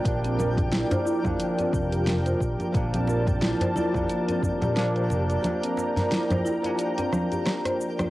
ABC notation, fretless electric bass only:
X:1
M:4/4
L:1/16
Q:"Swing 16ths" 1/4=89
K:Bblyd
V:1 name="Fretless electric bass" clef=bass
B,,,4- B,,, z2 F,, z2 F,,,4 B,,, z | B,,,4- B,,, z2 F,, z3 B,,3 F,,, z | z16 |]